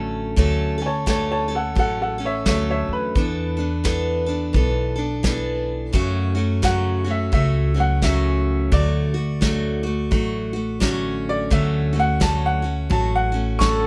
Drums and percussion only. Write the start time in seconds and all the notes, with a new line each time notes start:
0.37 kick
1.07 kick, snare
1.76 kick
2.46 kick, snare
3.16 kick
3.85 kick, snare
4.54 kick
5.24 kick, snare
5.94 kick
6.63 kick, snare
7.33 kick
8.02 kick, snare
8.72 kick
9.42 kick, snare
10.12 kick
10.81 kick, snare
11.51 kick
12.21 kick, snare
12.91 kick
13.61 kick, snare